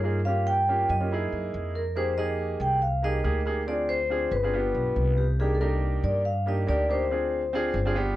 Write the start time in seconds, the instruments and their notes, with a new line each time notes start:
Already playing: upright bass G2
0.03 grand piano A#3 D#4 F4 G#4
0.25 grand piano A#3 C#4 F4 G4, vibraphone F5
0.47 vibraphone G5
0.68 grand piano A#3 C#4 F4 G4
0.89 upright bass F#2, vibraphone D#5
1.00 grand piano A#3 C#4 F4 G4
1.11 grand piano A#3 D#4 E4 G#4
1.33 upright bass F#2
1.54 upright bass F2
1.76 vibraphone A#4
1.96 grand piano A#3 D#4 G4 G#4, vibraphone C5
2.17 grand piano A#3 D#4 G4 G#4, vibraphone D#5
2.60 upright bass C2, vibraphone G5
2.82 vibraphone F5
3.02 grand piano A#3 D#4 G4 G#4, vibraphone D#5
3.23 upright bass D2, grand piano A#3 D#4 G4 G#4
3.45 grand piano A#3 D#4 G4 G#4
3.67 grand piano C4 D4 F4 G#4, vibraphone D5
3.89 vibraphone C5
4.10 grand piano C4 D4 F4 G#4
4.31 upright bass G1, vibraphone B4
4.43 grand piano C4 D4 F4 G#4
4.54 grand piano B3 D4 F4 G4
4.75 upright bass B1
4.96 upright bass C2
5.17 vibraphone G4
5.39 grand piano A#3 D4 D#4 G4, vibraphone G#4
5.54 vibraphone A4
5.60 grand piano A#3 D4 D#4 G4, vibraphone A#4
6.03 upright bass G2, vibraphone D5
6.25 vibraphone F5
6.46 grand piano A#3 D4 D#4 G4, vibraphone D#5
6.66 upright bass D2, grand piano A#3 D4 D#4 G4, vibraphone D5
6.88 grand piano A#3 D4 D#4 G4, vibraphone C5
7.10 grand piano C4 D4 F4 G#4
7.53 grand piano C4 D4 F4 G#4
7.74 upright bass G1
7.85 grand piano C4 D4 F4 G#4
7.95 grand piano B3 D4 F4 G4